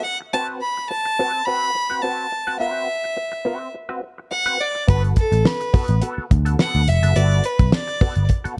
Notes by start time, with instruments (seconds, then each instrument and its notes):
0.04 fiddle F#5, muted clean electric guitar stroke
0.21 muted clean electric guitar stroke
0.33 clean electric guitar C4 F#4 B4, fiddle A5
0.61 fiddle B5
0.77 muted clean electric guitar stroke
0.90 fiddle A5, muted clean electric guitar stroke
1.05 muted clean electric guitar stroke
1.19 clean electric guitar C4 F#4 B4
1.34 muted clean electric guitar stroke
1.46 clean electric guitar C4 F#4 B4, fiddle B5
1.75 muted clean electric guitar stroke
1.90 clean electric guitar C4 F#4 B4
2.02 clean electric guitar C4 F#4 B4, fiddle A5
2.32 muted clean electric guitar stroke
2.47 clean electric guitar C4 F#4 B4
2.60 clean electric guitar B3 F4 A#4, fiddle E5
2.71 clean electric guitar C4 F#4 B4
3.04 muted clean electric guitar stroke
3.17 muted clean electric guitar stroke
3.32 muted clean electric guitar stroke
3.45 clean electric guitar C4 F#4 B4
3.61 muted clean electric guitar stroke
3.74 muted clean electric guitar stroke
3.89 clean electric guitar C4 F#4 B4
4.03 muted clean electric guitar stroke
4.18 muted clean electric guitar stroke
4.31 fiddle F#5, muted clean electric guitar stroke
4.46 clean electric guitar C4 F#4 B4
4.60 fiddle D5, muted clean electric guitar stroke
4.75 muted clean electric guitar stroke
4.88 picked electric bass G1, clean electric guitar B3 F#4 A4, fiddle B4, kick, closed hi-hat
5.04 closed hi-hat
5.16 fiddle A4, kick, closed hi-hat
5.32 picked electric bass A1, muted clean electric guitar stroke, closed hi-hat
5.45 fiddle B4, muted clean electric guitar stroke, snare
5.60 muted clean electric guitar stroke, closed hi-hat
5.74 clean electric guitar B3 F#4 A4, muted picked electric bass stroke, kick, open hi-hat
5.88 picked electric bass A1, muted clean electric guitar stroke, closed hi-hat
6.01 clean electric guitar B3 F#4 A4, closed hi-hat
6.18 muted picked electric bass stroke
6.31 picked electric bass D2, muted clean electric guitar stroke, kick, closed hi-hat
6.45 clean electric guitar B3 F#4 A4, closed hi-hat
6.59 clean electric guitar B3 F#4 A4, fiddle F#5, snare
6.75 picked electric bass D2, closed hi-hat
6.88 picked electric bass F1, fiddle E5, muted clean electric guitar stroke, closed hi-hat
7.03 picked electric bass F#1, clean electric guitar B3 F#4 A4, closed hi-hat
7.16 picked electric bass G1, clean electric guitar B3 F#4 A4, fiddle D5, closed hi-hat
7.31 closed hi-hat
7.44 fiddle B4, closed hi-hat
7.59 picked electric bass B1, muted clean electric guitar stroke, kick, closed hi-hat
7.72 fiddle D5, muted clean electric guitar stroke, snare
7.88 muted clean electric guitar stroke, closed hi-hat
8.01 clean electric guitar B3 F#4 A4, muted picked electric bass stroke, kick, open hi-hat
8.15 picked electric bass G1, muted clean electric guitar stroke, closed hi-hat
8.29 muted clean electric guitar stroke, kick, closed hi-hat
8.44 clean electric guitar B3 F#4 A4, muted picked electric bass stroke, closed hi-hat